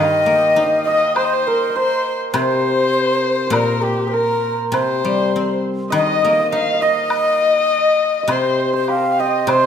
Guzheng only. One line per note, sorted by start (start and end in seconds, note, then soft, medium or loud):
0.00 1.75 D#3 medium
0.26 1.46 A#3 soft
0.56 1.76 D#4 soft
2.34 3.53 C3 medium
3.50 4.72 A#2 medium
4.72 5.92 C3 medium
5.05 6.23 G3 soft
5.36 6.52 C4 soft
5.92 7.69 D#3 medium
6.25 7.41 A#3 soft
6.52 7.70 D#4 soft
8.28 9.46 C3 medium
9.47 9.66 C3 medium